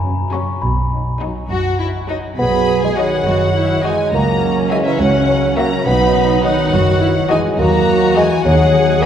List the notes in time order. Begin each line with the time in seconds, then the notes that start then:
Already playing: F#1 F#2 A#5
0.03 F#3 C#4
0.32 F#3 C#4 F#4 C#6
0.62 B1 B2 B5
0.92 F#3 D#4
1.21 F#3 D#4 F#4
1.50 F#1 F#2 F#4
1.79 F#3 D#4 E4
2.08 F#3 D#4 F#4
2.39 B1 B2 F#3 B3 G#4 B5
2.82 E3 G#3 G#5
2.97 D#3 F#3 F#4 D#5 F#5
3.26 F#1 F#2 F#4
3.56 E4
3.83 E3 G#3 D#4 F#4 D#5 G#5
4.12 C#2 F#3 A#3 C#4 A#5
4.70 E3 G#3 F#4 E5 G#5
4.84 C#3 E3 E5
4.98 C#2 C#3 F#3 F#5
5.57 F#3 A#3 F#4 E5 A#5
5.86 B1 B2 F#3 B3 D#4 B5
6.44 D#3 F#3 F#4 D#5 F#5
6.73 F#1 F#2 F#4
7.02 E4
7.30 E3 G#3 D#4 F#4 D#5 G#5
7.59 D#2 F#3 A#3 F#4 A#5
8.16 E3 G#3 F#4 D#5 G#5
8.45 D#2 D#3 F#3 G#4 F#5
9.02 B3